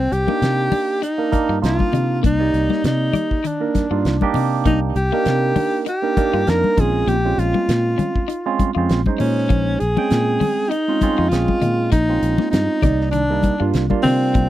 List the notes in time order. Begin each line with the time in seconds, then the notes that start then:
Already playing: C4
0.12 C2 G4, closed hi-hat
0.27 A#3 D4 D#4 G4, high conga
0.42 C3, snare, closed hi-hat
0.72 D4, open hi-hat, high conga, low conga
1.02 D#4, closed hi-hat
1.18 A#3 D4 D#4 A#4
1.32 A#3 D4 D#4 A#4, kick, closed hi-hat, high conga
1.49 G2 F4
1.62 C2 A#3 D4 D#4 F4, snare, closed hi-hat
1.79 kick, high conga
1.93 C3 D#4, closed hi-hat, low conga
2.23 C2 A#3 D#4, kick, closed hi-hat
2.39 A#3 D#4 G4 D5
2.54 C2, closed hi-hat
2.70 A#3, snare, high conga
2.84 C3 D#4, snare, closed hi-hat
3.13 D5, closed hi-hat, high conga, low conga
3.31 kick
3.44 D#3 D4, closed hi-hat
3.60 A#3 D4 D#4 A#4
3.75 kick, snare, closed hi-hat, high conga
3.91 G2 A#3 D4 D#4 F4
4.05 C2, snare, closed hi-hat
4.21 A#3 D4 D#4 G4, kick, high conga
4.34 C3 D#4, open hi-hat, low conga
4.66 C2 A#3 D#4, kick, closed hi-hat
4.96 C2 G4, closed hi-hat
5.12 A#3 D4 D#4 A#4
5.25 C3, snare, closed hi-hat
5.56 D4, open hi-hat, high conga, low conga
5.86 D#4 G4, closed hi-hat
6.02 A#3 D4 D#4 A#4
6.17 A#3 D4 D#4 A#4, kick, closed hi-hat, high conga
6.34 G2 F4
6.47 F2 A#3 D4 D#4 A#4, snare, closed hi-hat
6.64 high conga
6.77 A#1 G#3 C4 C#4 D#4 F4 G#4, kick, closed hi-hat, low conga
7.07 A#1 A#3 G4, closed hi-hat
7.25 G#3 C4 C#4 F4
7.38 A#1 F4, closed hi-hat
7.54 A#3, high conga
7.68 A#2, snare, closed hi-hat
7.98 C#4, closed hi-hat, high conga, low conga
8.15 kick
8.28 D#4, closed hi-hat
8.45 G#3 C4 C#4 F4
8.59 kick, closed hi-hat, high conga
8.75 F2 G#3 C4 C#4 F4
8.89 A#1, snare, closed hi-hat
9.06 G#3 C#4 D#4 C5, kick, high conga
9.18 A#2 C#4 D#4, open hi-hat, low conga
9.38 snare
9.49 A#1 A#3, kick, closed hi-hat
9.79 A#1 G#4, closed hi-hat
9.97 G#3 A#3 C4 C#4 G5, high conga
10.10 A#2, snare, closed hi-hat
10.40 C#4, open hi-hat, high conga, low conga
10.69 D#4, closed hi-hat
10.88 G#3 C4 C#4 F4
11.01 G#3 C4 C#4 F4, kick, closed hi-hat, high conga
11.18 F2 F4
11.29 A#1 G#3 C4 C#4 F4 G#4, snare, closed hi-hat
11.48 kick, high conga
11.62 A#2 D#4, closed hi-hat, low conga
11.92 A#1 A#3 D#4, kick, closed hi-hat
12.09 G#3 C4 C#4 F4
12.22 A#1, closed hi-hat
12.38 A#3, snare, high conga
12.50 G2 D#4, snare, closed hi-hat
12.82 C2 G3 A#3 D#4 D5, kick, closed hi-hat, low conga
13.01 snare
13.11 D#3 D4, closed hi-hat
13.30 G3 A#3 D4 D#4
13.43 kick, closed hi-hat, high conga
13.60 G2 G3 A#3 D4 F4
13.74 C2, snare, closed hi-hat
13.90 G3 A#3 D4 F4, kick, high conga
14.03 C3 C4 D#4, snare, open hi-hat, low conga
14.34 C2 A#3, kick, closed hi-hat